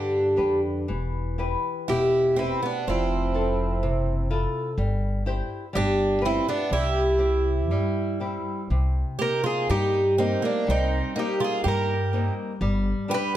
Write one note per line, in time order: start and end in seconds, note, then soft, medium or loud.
0.00 0.35 G2 medium
0.00 0.86 D3 medium
0.00 0.18 D4 soft
0.00 0.59 D4 soft
0.00 0.19 G4 soft
0.00 0.60 G4 medium
0.00 0.19 B4 soft
0.36 0.85 F2 medium
0.36 0.78 D4 soft
0.36 0.78 G4 soft
0.36 0.78 B4 soft
0.88 1.54 E1 medium
0.88 1.86 E3 medium
1.38 2.18 E4 soft
1.38 2.18 G4 soft
1.38 2.18 B4 soft
1.88 2.53 E1 medium
1.88 2.84 B2 medium
1.88 2.34 E4 medium
1.88 2.38 G4 medium
2.36 2.60 C4 medium
2.36 2.77 E4 soft
2.36 2.64 E4 medium
2.36 2.78 G4 soft
2.36 2.78 B4 soft
2.63 2.85 B3 medium
2.63 2.89 D4 medium
2.87 3.84 F1 medium
2.87 3.80 F3 medium
2.87 4.27 C4 medium
2.87 4.28 E4 medium
3.34 4.11 C4 soft
3.34 4.11 E4 soft
3.34 4.12 A4 soft
3.83 4.46 F#1 medium
3.83 4.76 C3 medium
4.30 4.69 E4 soft
4.30 4.69 F4 soft
4.30 4.69 A4 medium
4.78 5.40 G1 medium
4.78 5.26 G3 medium
5.26 5.65 E4 soft
5.26 5.65 G4 soft
5.26 5.65 C5 medium
5.73 6.38 G1 medium
5.73 6.21 G3 medium
5.73 6.20 D4 medium
5.73 6.24 G4 medium
6.21 6.60 F4 medium
6.21 6.61 G4 soft
6.21 6.61 B4 medium
6.25 6.47 C4 medium
6.25 6.49 E4 medium
6.48 6.70 B3 medium
6.48 6.73 D4 medium
6.70 7.71 C2 medium
6.70 7.67 C3 medium
6.70 8.18 E4 medium
6.70 8.18 G4 medium
7.18 7.99 C4 soft
7.18 8.00 E4 soft
7.18 8.00 G4 soft
7.71 8.36 G2 medium
7.71 8.68 G3 medium
8.20 8.60 C4 soft
8.20 8.61 E4 soft
8.20 8.61 G4 soft
8.70 9.03 C2 medium
8.70 9.67 C3 medium
9.19 9.99 A#3 soft
9.19 9.99 C4 soft
9.19 9.99 D#4 soft
9.19 9.42 G4 medium
9.19 9.46 A#4 medium
9.44 9.67 F4 medium
9.44 9.70 G#4 medium
9.70 10.33 G2 medium
9.70 10.65 G3 medium
9.70 10.15 D#4 medium
9.70 10.21 G4 medium
10.18 10.97 A#3 soft
10.18 10.41 C4 medium
10.18 10.97 C4 soft
10.18 10.44 D#4 medium
10.18 10.97 D#4 soft
10.42 10.65 A#3 medium
10.42 10.69 D4 medium
10.67 11.00 C2 medium
10.67 11.62 G3 medium
10.67 11.14 C4 medium
10.67 11.19 D#4 medium
11.15 11.94 A#3 medium
11.15 11.94 C4 soft
11.15 11.39 D#4 medium
11.15 11.94 D#4 medium
11.15 11.43 G4 medium
11.40 11.63 F4 medium
11.40 11.65 G#4 medium
11.64 12.28 G2 medium
11.64 12.58 G3 medium
11.64 12.33 G4 medium
11.68 12.35 A#4 medium
12.13 12.52 A#3 medium
12.13 12.52 C4 soft
12.13 12.52 D#4 medium
12.61 12.92 G1 loud
12.61 13.37 G3 medium
13.08 13.37 D4 medium
13.08 13.37 G4 soft
13.08 13.32 G4 medium
13.08 13.37 B4 medium
13.14 13.36 B4 loud